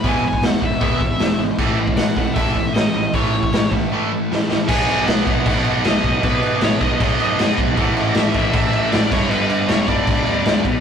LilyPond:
<<
  \new Staff \with { instrumentName = "Lead electric guitar" } { \time 4/4 \key b \mixolydian \tempo 4 = 156 gis''8 gis''8 fis''8 e''2 r8 | r4 fis''4 e''4 dis''4 | cis''4. r2 r8 | gis''4 fis''4 fis''4 dis''4 |
b'4 cis''8 dis''2 r8 | fis''4 e''4 e''4 d''8 cis''8 | b'4 cis''8 d''2 r8 | }
  \new Staff \with { instrumentName = "Distorted electric guitar" } { \clef bass \time 4/4 \key b \mixolydian <e gis b>8 <e gis>8 <e gis>8 <e gis>8 <e gis b>8 <e gis>8 <e gis>8 <e gis>8 | <a, e a>8 <a, e>8 <a, e>8 <a, e>8 <a, e a>8 <a, e>8 <a, e>8 <a, e>8 | <a, e a>8 <a, e>8 <a, e>8 <a, e>8 <a, e a>8 <a, e>8 <a, e>8 <a, e>8 | <b, dis fis b dis'>4. <b, dis fis b dis'>4. <b, dis fis b dis'>4 |
<b, dis fis b dis'>4. <b, dis fis b dis'>4. <b, dis fis b dis'>4 | <a, e a cis' e'>4. <a, e a cis' e'>4. <a, e a cis' e'>8 <g, d g b d'>8~ | <g, d g b d'>4 <g, d g b d'>4. <g, d g b d'>4 r8 | }
  \new Staff \with { instrumentName = "Distorted electric guitar" } { \clef bass \time 4/4 \key b \mixolydian <e, b, e>4. <e, b, e>2~ <e, b, e>8 | <a, e a>4. <a, e a>2~ <a, e a>8 | <a, e a>4. <a, e a>2~ <a, e a>8 | r1 |
r1 | r1 | r1 | }
  \new Staff \with { instrumentName = "Overdriven electric guitar" } { \clef bass \time 4/4 \key b \mixolydian <e, b, e>8 <e, b,>8 <e, b,>8 <e, b,>8 <e, b, e>8 <e, b,>8 <e, b,>8 <e, b,>8 | <a, e a>8 <a, e>8 <a, e>8 <a, e>8 <a, e a>8 <a, e>8 <a, e>8 <a, e>8 | <a, e a>8 <a, e>8 <a, e>8 <a, e>8 <a, e a>8 <a, e>8 <a, e>8 <a, e>8 | <b, fis b>2 <b, fis b>2 |
<b, fis b>2 <b, fis b>2 | <a, e a>2 <a, e a>4. <g, d g>8~ | <g, d g>4. <g, d g>2 r8 | }
  \new Staff \with { instrumentName = "Picked electric bass" } { \clef bass \time 4/4 \key b \mixolydian e,,4 e,,8 e,,8 e,,8 e,,8 e,,8 gis,,8 | a,,4 a,,8 a,,8 a,,8 a,,8 a,,8 a,,8 | a,,4 a,,8 a,,8 r2 | b,,8 b,,8 b,,8 b,,8 b,,8 b,,8 b,,8 b,,8 |
b,,8 b,8 a,,8 b,,8 b,,8 fis,8 fis,8 b,,8 | a,,8 a,,8 a,,8 a,,8 a,,8 a,,8 a,,8 g,,8 | g,,8 g,8 e,,8 g,,8 g,,8 d,8 d,8 ais,,8 | }
  \new DrumStaff \with { instrumentName = "Drums" } \drummode { \time 4/4 <hho bd>8. bd16 <hho sn>8 bd8 <hho bd>8 bd8 <hho sn>4 | <cymc bd>8. bd16 <hho sn>8 bd8 <hho bd>8 bd8 <hho sn>4 | <hho bd>8. bd16 <hho sn>8 bd8 r4 sn8 sn8 | <cymc bd>8 cymc8 <cymc sn>8 <cymc bd>8 <cymc bd>8 cymc8 <cymc sn>8 <cymc bd>8 |
<cymc bd>8 cymc8 <cymc sn>8 <cymc bd>8 <cymc bd>8 cymc8 <cymc sn>8 <cymc bd>8 | <cymc bd>8 cymc8 <cymc sn>8 <cymc bd>8 <cymc bd>8 cymc8 <cymc sn>8 <cymc bd>8 | cymc8 cymc8 <cymc sn>8 <cymc bd>8 <cymc bd>8 cymc8 <cymc sn>8 <cymc bd>8 | }
>>